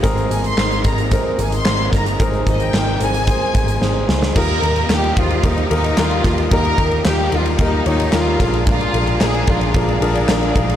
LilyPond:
<<
  \new Staff \with { instrumentName = "String section" } { \time 4/4 \key aes \major \tempo 4 = 111 << { <c aes>1~ | <c aes>1 | \key ees \dorian <g' ees''>1~ | <g' ees''>2.~ <g' ees''>8 <aes' d''>8~ |
<aes' d''>1 | } \\ { <bes ees'>1~ | <bes ees'>1 | <f'' bes''>1~ | <f'' bes''>1~ |
<f'' bes''>1 | } >> }
  \new Staff \with { instrumentName = "Grand piano" } { \time 4/4 \key aes \major <c' aes' bes'>8 <c' aes' c''>8 <c' aes' bes'>8 <c' aes' bes'>8 <c' aes' bes'>8 <c' aes' bes'>8 <c' aes' bes'>8 <c' aes' bes'>8 | <c' aes' bes'>8 <c' aes' c''>8 <c' aes' bes'>8 <c' aes' bes'>8 <c' aes' c''>8 <c' aes' c''>8 <c' aes' c''>8 <c' aes' c''>8 | \key ees \dorian <ees' f' g' bes'>8 <ees' f' g' bes'>8 <ees' f' g' bes'>8 <ees' f' g' c''>8 <ees' f' g' bes'>8 <ees' f' g' bes'>8 <ees' f' g' bes'>8 <ees' f' g' bes'>8 | <ees' f' g' bes'>8 <ees' f' g' bes'>8 <ees' f' g' bes'>8 <ees' f' g' bes'>8 <ees' f' g' bes'>8 <ees' f' g' des''>8 <ees' f' g' bes'>8 <des' d' f' aes' bes'>8~ |
<des' d' f' aes' bes'>8 <d' f' aes' bes'>8 <d' f' aes' bes'>8 <d' f' aes' bes'>8 <d' f' aes' bes'>8 <d' f' aes' bes'>8 <d' f' aes' bes'>8 <d' f' aes' bes'>8 | }
  \new Staff \with { instrumentName = "Grand piano" } { \clef bass \time 4/4 \key aes \major <aes, ees>4. r2 r8 | <aes, ees>4. r2 r8 | \key ees \dorian bes,4. r2 r8 | bes,4. r2 r8 |
r1 | }
  \new Staff \with { instrumentName = "Violin section" } { \time 4/4 \key aes \major r8 aes''16 c'''8. bes''8 r8 aes''16 c'''8. bes''8 | r8 ees''16 g''8. aes''2 r8 | \key ees \dorian bes'4 g'8 f'8 ees'8 ees'8 f'8. r16 | bes'4 g'8 f'16. f'32 ees'8 ees'8 f'8. r16 |
f'4 aes'8 f'8 d'4. r8 | }
  \new Staff \with { instrumentName = "Steel-string acoustic guitar" } { \time 4/4 \key aes \major <aes c' ees' bes'>8 <c' ees' bes'>8 <aes c' ees' bes'>8 <c' ees' bes'>8 <aes c' ees' bes'>8 <c' ees' bes'>8 <aes c' ees' bes'>8 <c' ees' bes'>8 | <aes c' ees' bes'>8 <c' ees'>8 <aes c' ees' bes'>8 <c' ees' bes'>8 <aes c' ees' bes'>8 <c' ees' bes'>8 <aes c' ees' bes'>8 <c' ees' bes'>8 | \key ees \dorian <ees g bes ees' f'>8 <bes ees'>8 <g bes ees' f'>8 f'8 <ees g bes ees' f'>8 <bes ees' f'>8 <g bes ees' f'>8 <bes ees' f'>8 | <ees g bes ees' f'>8 <bes ees' f'>8 <g bes ees' f'>8 <bes ees' f'>8 <ees g bes ees' f'>8 <bes ees' f'>8 <g bes ees' f'>8 <f aes d' f'>8 |
<bes, d f aes d' f'>8 <f aes d' f'>8 <f aes d' f'>8 <f aes d' f'>8 <bes, d f aes d' f'>8 <f aes d' f'>8 <f aes d' f'>8 <f aes f'>8 | }
  \new Staff \with { instrumentName = "Picked electric bass" } { \clef bass \time 4/4 \key aes \major aes,,8 aes,,8 aes,,8 aes,,8. r16 aes,,8 aes,,8 g,,8 | aes,,8 aes,,8 aes,,8 aes,,8. r16 aes,,8 aes,,8 des,8 | \key ees \dorian ees,8 ees,8 ees,8 ees,8 ees,8 ees,8 ees,8 ees,8 | ees,8 ees,8 ees,8 ees,8 ees,8 ees,8 ees,8 bes,,8~ |
bes,,8 bes,,8 bes,,8 bes,,8 bes,,8 bes,,8 bes,,8 bes,,8 | }
  \new DrumStaff \with { instrumentName = "Drums" } \drummode { \time 4/4 <hh bd>16 hh16 hh16 hh16 <hc sn>16 hh16 <hh bd>16 hh16 <hh bd>8 hh16 hh16 <hc sn>8 <hh bd sn>16 hh16 | <hh bd>16 hh16 <hh bd>16 hh16 <hc sn>8 hh16 hh16 <hh bd>8 <hh bd>16 hh16 sn8 sn16 sn16 | <cymc bd>8 cymr16 cymr16 <hc cymr sn>16 cymr16 <bd cymr>16 cymr16 <bd cymr>16 cymr16 cymr16 cymr16 <hc cymr sn>16 cymr16 <bd cymr sn>16 cymr16 | <bd cymr>16 cymr16 <bd cymr>16 cymr16 <hc cymr sn>8 cymr16 cymr16 <bd cymr>8 cymr16 cymr16 <hc cymr sn>8 <bd cymr sn>16 cymr16 |
<bd cymr>16 cymr16 cymr16 cymr16 <hc cymr sn>16 cymr16 <bd cymr>16 cymr16 <bd cymr>16 cymr16 cymr16 cymr16 <hc cymr sn>16 cymr16 <bd cymr>16 cymr16 | }
>>